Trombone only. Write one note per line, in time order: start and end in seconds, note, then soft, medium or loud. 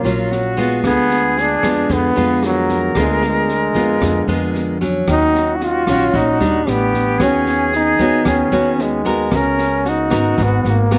0.00 0.56 A#3 medium
0.87 1.42 B3 loud
1.41 1.95 D4 loud
1.93 2.45 B3 loud
2.46 3.00 F#3 medium
2.99 3.24 G#3 medium
3.26 4.79 G#3 medium
5.11 5.57 D#4 loud
5.56 5.65 F#4 medium
5.63 6.18 F4 loud
6.16 6.71 D#4 loud
6.70 7.24 B3 medium
7.23 7.74 C#4 loud
7.76 8.30 D#4 medium
8.28 8.84 C#4 medium
8.82 9.38 G#3 medium
9.36 9.90 C#4 loud
9.89 10.44 D#4 medium
10.43 10.71 B3 medium
10.70 10.98 A#3 medium